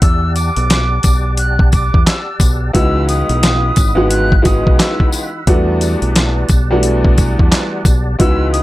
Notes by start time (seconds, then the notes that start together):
Already playing: F#5
0.02 E2 G4 D5 A5 E6, kick, closed hi-hat
0.35 D6, closed hi-hat, tambourine
0.56 B1, closed hi-hat
0.70 snare, clap, closed hi-hat
1.03 B1, kick, closed hi-hat, tambourine
1.37 F#6, closed hi-hat
1.59 kick
1.72 D6, kick, closed hi-hat, tambourine
1.94 E2, kick
2.05 E6, snare, clap, closed hi-hat
2.40 B1, kick, closed hi-hat, tambourine
2.73 C#2 E3 G#3 B3 D#4 F#4 F#5 B5 E6, kick, closed hi-hat
3.08 D#6, closed hi-hat, tambourine
3.29 B1, closed hi-hat
3.43 snare, clap, closed hi-hat
3.76 G#1, kick, closed hi-hat, tambourine
3.95 C#2 E3 G#3 B3 D#4 F#4
4.10 F#6, closed hi-hat
4.32 kick
4.42 C#2 E3 G#3 B3 D#4 F#4 D#6, kick, closed hi-hat, tambourine
4.67 B1, kick
4.79 E6, snare, clap, closed hi-hat
5.00 kick
5.12 closed hi-hat, tambourine
5.47 E2 G3 A3 B3 D4 F#4 D5 A5, kick, closed hi-hat
5.81 closed hi-hat, tambourine
6.02 B1, closed hi-hat
6.16 snare, clap, closed hi-hat
6.49 B1, kick, closed hi-hat, tambourine
6.71 E2 G3 A3 B3 D4 F#4
6.83 closed hi-hat
7.05 kick
7.18 kick, closed hi-hat, tambourine
7.39 E2, kick
7.52 snare, clap, closed hi-hat
7.85 B1, kick, closed hi-hat, tambourine
8.19 C#2 E3 G#3 B3 D#4 F#4 F#5 B5 E6, kick, closed hi-hat
8.52 D#6, closed hi-hat